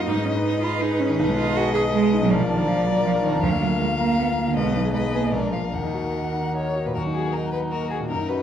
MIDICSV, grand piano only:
0, 0, Header, 1, 2, 480
1, 0, Start_track
1, 0, Key_signature, -6, "minor"
1, 0, Tempo, 374766
1, 82, Time_signature, 3, 2, 24, 8
1, 6322, Tempo, 402685
1, 8722, Tempo, 381194
1, 10580, End_track
2, 0, Start_track
2, 0, Title_t, "Grand piano"
2, 0, Program_c, 0, 0
2, 0, Control_c, 0, 64, 127
2, 91, Note_on_c, 0, 44, 68
2, 106, Control_c, 0, 64, 0
2, 205, Note_on_c, 0, 56, 55
2, 303, Control_c, 0, 64, 127
2, 326, Note_on_c, 0, 63, 54
2, 392, Note_off_c, 0, 56, 0
2, 452, Note_on_c, 0, 71, 53
2, 513, Note_off_c, 0, 63, 0
2, 569, Note_on_c, 0, 68, 55
2, 636, Note_off_c, 0, 71, 0
2, 691, Note_on_c, 0, 75, 51
2, 754, Note_off_c, 0, 68, 0
2, 813, Note_on_c, 0, 83, 60
2, 874, Note_off_c, 0, 75, 0
2, 923, Note_on_c, 0, 75, 59
2, 995, Note_off_c, 0, 83, 0
2, 1051, Note_on_c, 0, 68, 51
2, 1109, Note_off_c, 0, 75, 0
2, 1165, Note_on_c, 0, 71, 57
2, 1233, Note_off_c, 0, 68, 0
2, 1288, Note_on_c, 0, 63, 51
2, 1351, Note_off_c, 0, 71, 0
2, 1399, Note_on_c, 0, 51, 51
2, 1473, Note_off_c, 0, 63, 0
2, 1475, Note_off_c, 0, 44, 0
2, 1516, Note_off_c, 0, 51, 0
2, 1525, Note_on_c, 0, 35, 63
2, 1536, Control_c, 0, 64, 0
2, 1644, Note_on_c, 0, 56, 62
2, 1739, Control_c, 0, 64, 127
2, 1749, Note_on_c, 0, 63, 57
2, 1831, Note_off_c, 0, 56, 0
2, 1873, Note_on_c, 0, 75, 64
2, 1943, Note_off_c, 0, 63, 0
2, 2009, Note_on_c, 0, 68, 62
2, 2065, Note_off_c, 0, 75, 0
2, 2129, Note_on_c, 0, 75, 59
2, 2193, Note_off_c, 0, 68, 0
2, 2246, Note_on_c, 0, 87, 65
2, 2313, Note_off_c, 0, 75, 0
2, 2367, Note_on_c, 0, 75, 59
2, 2431, Note_off_c, 0, 87, 0
2, 2484, Note_on_c, 0, 68, 64
2, 2551, Note_off_c, 0, 75, 0
2, 2604, Note_on_c, 0, 75, 65
2, 2669, Note_off_c, 0, 68, 0
2, 2719, Note_on_c, 0, 63, 68
2, 2788, Note_off_c, 0, 75, 0
2, 2840, Note_on_c, 0, 47, 55
2, 2905, Note_off_c, 0, 63, 0
2, 2911, Note_off_c, 0, 35, 0
2, 2951, Note_on_c, 0, 34, 68
2, 2953, Note_off_c, 0, 47, 0
2, 2973, Control_c, 0, 64, 0
2, 3073, Note_on_c, 0, 53, 67
2, 3190, Control_c, 0, 64, 127
2, 3196, Note_on_c, 0, 62, 67
2, 3262, Note_off_c, 0, 53, 0
2, 3302, Note_on_c, 0, 70, 59
2, 3384, Note_off_c, 0, 62, 0
2, 3427, Note_on_c, 0, 65, 64
2, 3498, Note_off_c, 0, 70, 0
2, 3543, Note_on_c, 0, 74, 62
2, 3620, Note_off_c, 0, 65, 0
2, 3669, Note_on_c, 0, 82, 62
2, 3737, Note_off_c, 0, 74, 0
2, 3798, Note_on_c, 0, 74, 72
2, 3859, Note_off_c, 0, 82, 0
2, 3919, Note_on_c, 0, 65, 59
2, 3983, Note_off_c, 0, 74, 0
2, 4028, Note_on_c, 0, 70, 54
2, 4103, Note_off_c, 0, 65, 0
2, 4153, Note_on_c, 0, 62, 61
2, 4218, Note_off_c, 0, 70, 0
2, 4276, Note_on_c, 0, 41, 52
2, 4341, Note_off_c, 0, 62, 0
2, 4343, Note_off_c, 0, 34, 0
2, 4390, Note_off_c, 0, 41, 0
2, 4391, Note_on_c, 0, 38, 76
2, 4410, Control_c, 0, 64, 0
2, 4519, Note_on_c, 0, 58, 61
2, 4630, Note_on_c, 0, 65, 58
2, 4646, Control_c, 0, 64, 127
2, 4706, Note_off_c, 0, 58, 0
2, 4749, Note_on_c, 0, 70, 56
2, 4822, Note_off_c, 0, 65, 0
2, 4882, Note_on_c, 0, 65, 56
2, 4942, Note_off_c, 0, 70, 0
2, 5008, Note_on_c, 0, 77, 59
2, 5068, Note_off_c, 0, 65, 0
2, 5121, Note_on_c, 0, 82, 56
2, 5191, Note_off_c, 0, 77, 0
2, 5251, Note_on_c, 0, 77, 58
2, 5308, Note_off_c, 0, 82, 0
2, 5354, Note_on_c, 0, 70, 58
2, 5435, Note_off_c, 0, 77, 0
2, 5485, Note_on_c, 0, 65, 56
2, 5547, Note_off_c, 0, 70, 0
2, 5612, Note_on_c, 0, 58, 53
2, 5673, Note_off_c, 0, 65, 0
2, 5730, Note_on_c, 0, 50, 54
2, 5797, Note_off_c, 0, 38, 0
2, 5797, Note_off_c, 0, 58, 0
2, 5844, Note_off_c, 0, 50, 0
2, 5850, Note_on_c, 0, 35, 66
2, 5860, Control_c, 0, 64, 0
2, 5971, Note_on_c, 0, 59, 54
2, 6067, Control_c, 0, 64, 127
2, 6087, Note_on_c, 0, 63, 52
2, 6159, Note_off_c, 0, 59, 0
2, 6200, Note_on_c, 0, 68, 48
2, 6278, Note_off_c, 0, 63, 0
2, 6326, Note_on_c, 0, 71, 50
2, 6391, Note_off_c, 0, 68, 0
2, 6439, Note_on_c, 0, 75, 49
2, 6507, Note_off_c, 0, 71, 0
2, 6558, Note_on_c, 0, 80, 51
2, 6623, Note_off_c, 0, 75, 0
2, 6667, Note_on_c, 0, 75, 51
2, 6741, Note_off_c, 0, 80, 0
2, 6764, Note_off_c, 0, 35, 0
2, 6777, Note_on_c, 0, 34, 58
2, 6785, Note_off_c, 0, 75, 0
2, 6811, Control_c, 0, 64, 0
2, 6901, Note_on_c, 0, 62, 44
2, 6992, Control_c, 0, 64, 127
2, 7020, Note_on_c, 0, 65, 45
2, 7093, Note_off_c, 0, 62, 0
2, 7142, Note_on_c, 0, 70, 40
2, 7215, Note_off_c, 0, 65, 0
2, 7247, Note_off_c, 0, 34, 0
2, 7265, Note_off_c, 0, 70, 0
2, 7269, Note_on_c, 0, 39, 52
2, 7290, Control_c, 0, 64, 0
2, 7389, Note_on_c, 0, 63, 44
2, 7508, Control_c, 0, 64, 127
2, 7516, Note_on_c, 0, 66, 42
2, 7588, Note_off_c, 0, 63, 0
2, 7641, Note_on_c, 0, 70, 40
2, 7713, Note_off_c, 0, 66, 0
2, 7759, Note_on_c, 0, 75, 44
2, 7836, Note_off_c, 0, 70, 0
2, 7881, Note_on_c, 0, 78, 40
2, 7955, Note_off_c, 0, 75, 0
2, 8002, Note_on_c, 0, 82, 43
2, 8076, Note_off_c, 0, 78, 0
2, 8125, Note_on_c, 0, 78, 40
2, 8196, Note_off_c, 0, 82, 0
2, 8241, Note_on_c, 0, 75, 38
2, 8318, Note_off_c, 0, 78, 0
2, 8372, Note_on_c, 0, 70, 43
2, 8436, Note_off_c, 0, 75, 0
2, 8488, Note_on_c, 0, 66, 43
2, 8562, Note_off_c, 0, 70, 0
2, 8615, Note_on_c, 0, 46, 36
2, 8677, Note_off_c, 0, 66, 0
2, 8681, Note_off_c, 0, 39, 0
2, 8725, Note_on_c, 0, 39, 41
2, 8728, Note_off_c, 0, 46, 0
2, 8747, Control_c, 0, 64, 0
2, 8853, Note_on_c, 0, 63, 37
2, 8956, Control_c, 0, 64, 127
2, 8986, Note_on_c, 0, 66, 38
2, 9045, Note_off_c, 0, 63, 0
2, 9105, Note_on_c, 0, 70, 32
2, 9171, Note_off_c, 0, 66, 0
2, 9215, Note_on_c, 0, 75, 34
2, 9290, Note_off_c, 0, 70, 0
2, 9331, Note_on_c, 0, 78, 38
2, 9403, Note_off_c, 0, 75, 0
2, 9457, Note_on_c, 0, 82, 36
2, 9520, Note_off_c, 0, 78, 0
2, 9567, Note_on_c, 0, 78, 39
2, 9642, Note_off_c, 0, 82, 0
2, 9696, Note_on_c, 0, 75, 37
2, 9758, Note_off_c, 0, 78, 0
2, 9816, Note_on_c, 0, 70, 39
2, 9883, Note_off_c, 0, 75, 0
2, 9924, Note_on_c, 0, 66, 38
2, 10004, Note_off_c, 0, 70, 0
2, 10049, Note_on_c, 0, 46, 35
2, 10118, Note_off_c, 0, 66, 0
2, 10124, Note_off_c, 0, 39, 0
2, 10168, Note_off_c, 0, 46, 0
2, 10173, Note_on_c, 0, 42, 43
2, 10192, Control_c, 0, 64, 0
2, 10287, Note_on_c, 0, 63, 38
2, 10407, Control_c, 0, 64, 127
2, 10416, Note_on_c, 0, 66, 37
2, 10478, Note_off_c, 0, 63, 0
2, 10534, Note_on_c, 0, 70, 33
2, 10580, Note_off_c, 0, 42, 0
2, 10580, Note_off_c, 0, 66, 0
2, 10580, Note_off_c, 0, 70, 0
2, 10580, End_track
0, 0, End_of_file